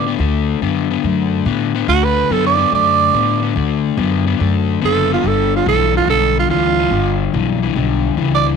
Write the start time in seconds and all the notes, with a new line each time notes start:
Already playing: A2 D5
0.07 D3 B3
0.19 D2 D3 A3
0.61 F#2 D3 B3
0.90 D3 B3
1.04 F#2 D3 A3
1.45 A2 D3 B3
1.75 D3 B3
1.88 D2 D3 A3 F#4
2.04 B4
2.30 F#2 D3 B3 A4
2.46 D5
2.58 D3 B3
2.72 F#2 D3 A3 D5
3.14 A2 D3 B3
3.42 D3 B3
3.56 D2 D3 A3
3.97 F#2 D3 B3
4.26 D3 B3
4.40 F#2 D3 A3
4.81 F#1 D3 B3 A4
5.10 D3 B3 F4
5.23 G1 G2 D3
5.27 A4
5.56 F4
5.66 B1 G2 E3 A4
5.94 G2 E3 F4
6.08 B1 G2 D3 A4
6.39 F4
6.50 D2 G2 E3 F4
6.79 G2 E3
6.91 G1 G2 D3
7.34 B1 G2 E3
7.62 G2 E3
7.75 B1 G2 D3
8.17 C#2 G2 E3
8.35 D5
8.46 G2 E3